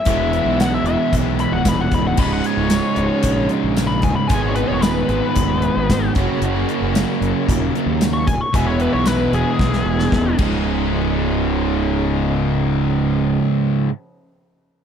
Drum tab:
CC |----------------|x---------------|----------------|----------------|
HH |x-x-x-x-x-x-x-x-|--x-x-x-x-x-x-x-|x-x-x-x-x-x-x-x-|x-x-x-x-x-x-x-x-|
TB |----x-------x---|----x-------x---|----x-------x---|----x-------x---|
SD |----o-------o---|----o-------o---|----o-------o---|----o-------o---|
BD |o-------o---o-o-|o-------o-----o-|o-------o---o-o-|--------o-----o-|

CC |--------------x-|----------------|----------------|
HH |x-x-x-x---------|----------------|----------------|
TB |----x-----------|----------------|----------------|
SD |----o---oo-oo---|----------------|----------------|
BD |o-------o---o-o-|----------------|----------------|